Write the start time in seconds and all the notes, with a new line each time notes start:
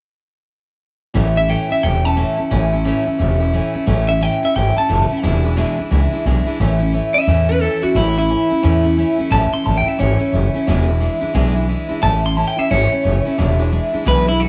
1.14 A1 A2 E3 A3 C#4 E4
1.35 A3 C#4 E4 E5
1.49 A2 E3 A3 C#4 E4 G5
1.69 A3 C#4 E4 E5, muted upright bass stroke
1.83 E1 E3 A3 C#4 E4 G5
2.04 A3 C#4 E4 A5
2.16 A2 E3 A3 C#4 E4
2.37 A3 C#4 E4, muted upright bass stroke
2.51 A1 A2 E3 A3 C#4 E4
2.72 A3 C#4 E4
2.85 A2 E3 A3 C#4 E4
3.05 A3 C#4 E4, muted upright bass stroke
3.18 E1 E3 A3 C#4 E4
3.40 A3 C#4 E4
3.53 A2 E3 A3 C#4 E4
3.74 A3 C#4 E4, muted upright bass stroke
3.86 A1 A2 E3 A3 C#4 E4
4.08 A3 C#4 E4 E5
4.20 A2 E3 A3 C#4 E4 G5
4.43 A3 C#4 E4 E5, muted upright bass stroke
4.55 G#1 E3 A3 C#4 E4 G5
4.77 A3 C#4 E4 A5, muted upright bass stroke
4.89 F#1 A2 E3 A3 C#4 E4
5.11 A3 C#4 E4, muted upright bass stroke
5.22 E1 E2 B2 E3 G#3 D4 E4
5.44 E3 G#3 D4 E4
5.56 E2 B2 E3 G#3 D4 E4
5.78 E3 G#3 D4 E4, muted upright bass stroke
5.90 C#2 E3 G#3 D4 E4
6.13 E3 G#3 D4 E4, muted upright bass stroke
6.25 B1 E2 B2 E3 G#3 D4 E4
6.46 E3 G#3 D4 E4, muted upright bass stroke
6.60 A1 A2 E3 A3 C#4 E4
6.79 A3 C#4 E4
6.93 E3 A3 C#4 E4
7.14 A3 C#4 E4 E5, muted upright bass stroke
7.27 E2 A2 E3 A3 C#4 E4
7.48 A3 C#4 E4 B4
7.60 E3 A3 C#4 E4 A4
7.82 A3 C#4 E4 F#4, muted upright bass stroke
7.95 A1 A2 E3 A3 C#4 E4
8.16 A3 C#4 E4
8.30 E3 A3 C#4 E4
8.50 A3 C#4 E4, muted upright bass stroke
8.63 E2 A2 E3 A3 C#4 E4
8.84 A3 C#4 E4
8.96 E3 A3 C#4 E4
9.18 A3 C#4 E4, muted upright bass stroke
9.30 A1 A2 E3 A3 C#4 E4 A5
9.51 A3 C#4 E4 C6, muted upright bass stroke
9.64 A1 E3 A3 C#4 E4 A5
9.78 G5
9.85 A3 C#4 E4 E5, muted upright bass stroke
9.98 G#1 A2 E3 A3 C#4 E4 C#5
10.18 A3 C#4 E4, muted upright bass stroke
10.32 F#1 E3 A3 C#4 E4
10.54 A3 C#4 E4, muted upright bass stroke
10.67 E1 E2 B2 E3 G#3 D4 E4
10.87 E3 G#3 D4 E4
11.00 E3 G#3 D4 E4
11.21 E3 G#3 D4 E4, muted upright bass stroke
11.34 B1 E2 B2 E3 G#3 D4 E4
11.55 E3 G#3 D4 E4
11.68 E3 G#3 D4 E4
11.89 E3 G#3 D4 E4, muted upright bass stroke
12.01 A1 A2 E3 A3 C#4 E4 A5
12.22 A3 C#4 E4 C6
12.36 E3 A3 C#4 E4 A5
12.48 G5
12.57 A3 C#4 E4 E5, muted upright bass stroke
12.70 G#1 A2 E3 A3 C#4 E4 C#5
12.92 A3 C#4 E4, muted upright bass stroke
13.04 F#1 E3 A3 C#4 E4
13.25 A3 C#4 E4, muted upright bass stroke
13.37 E1 E2 B2 E3 G#3 D4 E4
13.59 E3 G#3 D4 E4
13.71 E3 G#3 D4 E4
13.93 E3 G#3 D4 E4, muted upright bass stroke
14.05 B1 E2 B2 E3 G#3 D4 E4 B4
14.26 E3 G#3 D4 E4
14.39 E3 G#3 D4 E4 F#4